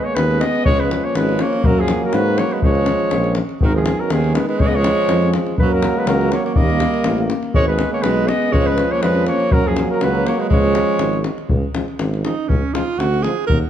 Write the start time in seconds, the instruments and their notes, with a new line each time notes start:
Already playing: trombone G#3, euphonium B3
0.01 alto saxophone B3, flugelhorn C#5 D#5
0.08 alto saxophone A#3
0.15 tuba D#2, alto saxophone G#3, flugelhorn B4, davul high
0.31 davul high
0.40 alto saxophone B3, flugelhorn D#5, davul high
0.55 davul high
0.65 tuba C#2, trombone F3, alto saxophone G#3, euphonium C#4, flugelhorn C#5, davul low
0.79 alto saxophone G#3, flugelhorn B4
0.91 davul high
1.04 alto saxophone A#3, flugelhorn C#5
1.15 tuba G#1, alto saxophone G#3, flugelhorn B4, davul high
1.29 davul high
1.39 alto saxophone A#3, flugelhorn C#5, davul high
1.53 davul high
1.63 tuba F#2, trombone F#3, alto saxophone F#3, euphonium A#3, flugelhorn A#4, davul low
1.79 alto saxophone F3, flugelhorn G#4
1.88 davul high
2.04 alto saxophone F#3, flugelhorn A#4
2.13 tuba G#2, alto saxophone F#3, flugelhorn B4, davul high
2.26 davul high
2.38 alto saxophone A#3, flugelhorn C#5, davul high
2.51 alto saxophone G#3, flugelhorn B4, davul high
2.62 tuba C#2, trombone F3, alto saxophone G#3, euphonium G#3, flugelhorn C#5, davul low
2.75 davul high
2.86 davul high
3.00 davul high
3.11 tuba A#1, davul high
3.24 davul high
3.35 davul high
3.49 davul high
3.60 tuba G#1, trombone D#3, alto saxophone D#3, euphonium B3, flugelhorn A#4, davul low
3.75 alto saxophone F3, flugelhorn G#4
3.86 davul high
3.99 alto saxophone F#3, flugelhorn A#4
4.10 tuba D#2, alto saxophone D#3, flugelhorn G#4, davul high
4.24 davul high
4.34 alto saxophone G#3, flugelhorn B4, davul high
4.48 alto saxophone G#3, flugelhorn B4, davul high
4.59 tuba C#2, trombone F3, euphonium G#3, alto saxophone G#3, flugelhorn C#5, davul low
4.66 alto saxophone B3, flugelhorn D#5
4.75 alto saxophone G#3, flugelhorn C#5
4.84 davul high
5.09 tuba F2, davul high
5.22 davul high
5.33 davul high
5.47 davul high
5.58 tuba F#2, trombone F#3, alto saxophone F#3, euphonium A#3, flugelhorn B4, davul low
5.73 alto saxophone F#3, flugelhorn A#4
5.83 davul high
5.96 alto saxophone G#3, flugelhorn B4
6.06 tuba C#2, alto saxophone F#3, flugelhorn A#4, davul high
6.21 davul high
6.31 alto saxophone A#3, flugelhorn C#5, davul high
6.44 alto saxophone A#3, flugelhorn C#5, davul high
6.54 tuba D#2, trombone G3, alto saxophone A#3, euphonium A#3, flugelhorn D#5, davul low
6.70 davul high
6.80 davul high
6.94 davul high
7.04 tuba A1, davul high
7.18 davul high
7.30 davul high
7.43 davul high
7.53 tuba G#1, alto saxophone G#3, trombone G#3, euphonium B3, flugelhorn C#5, davul low
7.67 alto saxophone G#3, flugelhorn B4
7.79 davul high
7.91 alto saxophone A#3, flugelhorn C#5
8.02 tuba B1, alto saxophone G#3, flugelhorn B4, davul high
8.17 davul high
8.27 alto saxophone B3, flugelhorn D#5, davul high
8.42 davul high
8.52 tuba C#2, trombone F3, alto saxophone G#3, euphonium C#4, flugelhorn C#5, davul low
8.66 alto saxophone G#3, flugelhorn B4
8.78 davul high
8.91 alto saxophone A#3, flugelhorn C#5
9.02 tuba F2, alto saxophone G#3, flugelhorn B4, davul high
9.15 davul high
9.26 alto saxophone A#3, flugelhorn C#5, davul high
9.40 davul high
9.50 tuba F#2, alto saxophone F#3, trombone F#3, euphonium A#3, flugelhorn A#4, davul low
9.66 alto saxophone F3, flugelhorn G#4
9.76 davul high
9.89 alto saxophone F#3, flugelhorn A#4
10.01 tuba C#2, alto saxophone F#3, flugelhorn B4, davul high
10.15 davul high
10.26 alto saxophone A#3, flugelhorn C#5, davul high
10.38 alto saxophone G#3, flugelhorn B4, davul high
10.50 tuba C#2, trombone F3, alto saxophone G#3, euphonium G#3, flugelhorn C#5, davul low
10.64 davul high
10.75 davul high
10.89 davul high
10.99 tuba G#1, davul high
11.13 davul high
11.24 davul high
11.38 davul high
11.49 tuba C#2, davul low
11.74 trombone F3, euphonium G#3, davul high
11.88 davul high
11.99 tuba G#1, davul high
12.14 davul high
12.23 trombone F3, euphonium G#3, alto saxophone D#4, davul high
12.48 tuba C#2, alto saxophone C#4, davul low
12.73 trombone F3, euphonium G#3, alto saxophone F4, davul high
12.89 davul high
12.98 tuba D2, alto saxophone F#4, davul high
13.14 davul high
13.23 trombone F3, euphonium G#3, alto saxophone G#4, davul high
13.47 tuba D#2, alto saxophone A#4, davul low